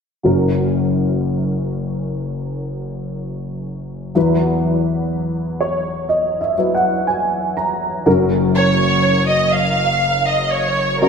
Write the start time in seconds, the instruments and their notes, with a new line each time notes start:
0.23 grand piano F#1 F#2 F#3 C#4 A#4
4.15 grand piano E2 F#3 E4 B4
5.61 grand piano C#5
6.09 grand piano D#5
6.41 grand piano E5
6.57 grand piano F#3 E4 B4
6.75 grand piano F#5
7.07 grand piano G#5
7.57 grand piano A#5
8.06 grand piano F#1 F#2 F#3 C#4 A#4
8.56 violin section C#5
9.30 violin section D#5
9.54 violin section F5
10.28 violin section D#5
10.52 violin section C#5
11.01 grand piano F#3 C#4 C#5, violin section A#4